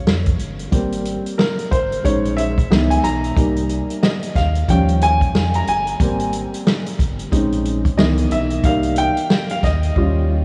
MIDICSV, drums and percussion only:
0, 0, Header, 1, 2, 480
1, 0, Start_track
1, 0, Tempo, 659341
1, 531, Time_signature, 4, 2, 24, 8
1, 7606, End_track
2, 0, Start_track
2, 0, Title_t, "Drums"
2, 51, Note_on_c, 9, 38, 102
2, 124, Note_off_c, 9, 38, 0
2, 189, Note_on_c, 9, 42, 50
2, 195, Note_on_c, 9, 36, 95
2, 261, Note_off_c, 9, 42, 0
2, 268, Note_off_c, 9, 36, 0
2, 287, Note_on_c, 9, 42, 60
2, 359, Note_off_c, 9, 42, 0
2, 431, Note_on_c, 9, 42, 46
2, 503, Note_off_c, 9, 42, 0
2, 526, Note_on_c, 9, 36, 105
2, 527, Note_on_c, 9, 42, 88
2, 599, Note_off_c, 9, 36, 0
2, 599, Note_off_c, 9, 42, 0
2, 672, Note_on_c, 9, 42, 58
2, 745, Note_off_c, 9, 42, 0
2, 767, Note_on_c, 9, 42, 64
2, 839, Note_off_c, 9, 42, 0
2, 918, Note_on_c, 9, 42, 54
2, 991, Note_off_c, 9, 42, 0
2, 1012, Note_on_c, 9, 38, 112
2, 1085, Note_off_c, 9, 38, 0
2, 1155, Note_on_c, 9, 42, 55
2, 1228, Note_off_c, 9, 42, 0
2, 1250, Note_on_c, 9, 36, 88
2, 1254, Note_on_c, 9, 42, 69
2, 1323, Note_off_c, 9, 36, 0
2, 1327, Note_off_c, 9, 42, 0
2, 1398, Note_on_c, 9, 42, 48
2, 1470, Note_off_c, 9, 42, 0
2, 1490, Note_on_c, 9, 36, 79
2, 1493, Note_on_c, 9, 42, 91
2, 1563, Note_off_c, 9, 36, 0
2, 1566, Note_off_c, 9, 42, 0
2, 1640, Note_on_c, 9, 42, 51
2, 1712, Note_off_c, 9, 42, 0
2, 1733, Note_on_c, 9, 42, 68
2, 1806, Note_off_c, 9, 42, 0
2, 1877, Note_on_c, 9, 36, 89
2, 1883, Note_on_c, 9, 42, 45
2, 1949, Note_off_c, 9, 36, 0
2, 1956, Note_off_c, 9, 42, 0
2, 1977, Note_on_c, 9, 38, 101
2, 2050, Note_off_c, 9, 38, 0
2, 2118, Note_on_c, 9, 42, 53
2, 2191, Note_off_c, 9, 42, 0
2, 2215, Note_on_c, 9, 42, 65
2, 2288, Note_off_c, 9, 42, 0
2, 2358, Note_on_c, 9, 42, 48
2, 2431, Note_off_c, 9, 42, 0
2, 2450, Note_on_c, 9, 36, 114
2, 2454, Note_on_c, 9, 42, 91
2, 2523, Note_off_c, 9, 36, 0
2, 2527, Note_off_c, 9, 42, 0
2, 2595, Note_on_c, 9, 42, 52
2, 2668, Note_off_c, 9, 42, 0
2, 2688, Note_on_c, 9, 42, 62
2, 2761, Note_off_c, 9, 42, 0
2, 2840, Note_on_c, 9, 42, 55
2, 2912, Note_off_c, 9, 42, 0
2, 2934, Note_on_c, 9, 38, 109
2, 3007, Note_off_c, 9, 38, 0
2, 3076, Note_on_c, 9, 42, 61
2, 3149, Note_off_c, 9, 42, 0
2, 3170, Note_on_c, 9, 36, 87
2, 3172, Note_on_c, 9, 42, 73
2, 3178, Note_on_c, 9, 38, 36
2, 3243, Note_off_c, 9, 36, 0
2, 3245, Note_off_c, 9, 42, 0
2, 3251, Note_off_c, 9, 38, 0
2, 3313, Note_on_c, 9, 42, 46
2, 3386, Note_off_c, 9, 42, 0
2, 3409, Note_on_c, 9, 36, 78
2, 3411, Note_on_c, 9, 42, 84
2, 3482, Note_off_c, 9, 36, 0
2, 3484, Note_off_c, 9, 42, 0
2, 3556, Note_on_c, 9, 42, 49
2, 3629, Note_off_c, 9, 42, 0
2, 3650, Note_on_c, 9, 42, 67
2, 3723, Note_off_c, 9, 42, 0
2, 3795, Note_on_c, 9, 36, 90
2, 3799, Note_on_c, 9, 42, 48
2, 3867, Note_off_c, 9, 36, 0
2, 3872, Note_off_c, 9, 42, 0
2, 3895, Note_on_c, 9, 38, 108
2, 3967, Note_off_c, 9, 38, 0
2, 4032, Note_on_c, 9, 42, 52
2, 4104, Note_off_c, 9, 42, 0
2, 4130, Note_on_c, 9, 42, 66
2, 4203, Note_off_c, 9, 42, 0
2, 4273, Note_on_c, 9, 42, 52
2, 4345, Note_off_c, 9, 42, 0
2, 4368, Note_on_c, 9, 36, 110
2, 4370, Note_on_c, 9, 42, 92
2, 4441, Note_off_c, 9, 36, 0
2, 4442, Note_off_c, 9, 42, 0
2, 4511, Note_on_c, 9, 42, 55
2, 4583, Note_off_c, 9, 42, 0
2, 4606, Note_on_c, 9, 42, 67
2, 4679, Note_off_c, 9, 42, 0
2, 4760, Note_on_c, 9, 42, 57
2, 4833, Note_off_c, 9, 42, 0
2, 4854, Note_on_c, 9, 38, 114
2, 4927, Note_off_c, 9, 38, 0
2, 4996, Note_on_c, 9, 42, 60
2, 5069, Note_off_c, 9, 42, 0
2, 5090, Note_on_c, 9, 36, 91
2, 5093, Note_on_c, 9, 42, 76
2, 5163, Note_off_c, 9, 36, 0
2, 5165, Note_off_c, 9, 42, 0
2, 5235, Note_on_c, 9, 42, 53
2, 5308, Note_off_c, 9, 42, 0
2, 5330, Note_on_c, 9, 36, 82
2, 5333, Note_on_c, 9, 42, 94
2, 5403, Note_off_c, 9, 36, 0
2, 5406, Note_off_c, 9, 42, 0
2, 5478, Note_on_c, 9, 42, 51
2, 5550, Note_off_c, 9, 42, 0
2, 5572, Note_on_c, 9, 42, 64
2, 5645, Note_off_c, 9, 42, 0
2, 5715, Note_on_c, 9, 36, 89
2, 5720, Note_on_c, 9, 42, 49
2, 5788, Note_off_c, 9, 36, 0
2, 5793, Note_off_c, 9, 42, 0
2, 5814, Note_on_c, 9, 38, 112
2, 5887, Note_off_c, 9, 38, 0
2, 5952, Note_on_c, 9, 42, 55
2, 6025, Note_off_c, 9, 42, 0
2, 6049, Note_on_c, 9, 42, 59
2, 6122, Note_off_c, 9, 42, 0
2, 6190, Note_on_c, 9, 42, 50
2, 6263, Note_off_c, 9, 42, 0
2, 6288, Note_on_c, 9, 36, 114
2, 6288, Note_on_c, 9, 42, 90
2, 6360, Note_off_c, 9, 36, 0
2, 6361, Note_off_c, 9, 42, 0
2, 6428, Note_on_c, 9, 42, 53
2, 6500, Note_off_c, 9, 42, 0
2, 6522, Note_on_c, 9, 42, 66
2, 6595, Note_off_c, 9, 42, 0
2, 6675, Note_on_c, 9, 42, 58
2, 6747, Note_off_c, 9, 42, 0
2, 6772, Note_on_c, 9, 38, 113
2, 6844, Note_off_c, 9, 38, 0
2, 6912, Note_on_c, 9, 42, 59
2, 6985, Note_off_c, 9, 42, 0
2, 7011, Note_on_c, 9, 36, 91
2, 7013, Note_on_c, 9, 42, 74
2, 7018, Note_on_c, 9, 38, 36
2, 7084, Note_off_c, 9, 36, 0
2, 7086, Note_off_c, 9, 42, 0
2, 7091, Note_off_c, 9, 38, 0
2, 7156, Note_on_c, 9, 42, 49
2, 7228, Note_off_c, 9, 42, 0
2, 7251, Note_on_c, 9, 36, 78
2, 7324, Note_off_c, 9, 36, 0
2, 7606, End_track
0, 0, End_of_file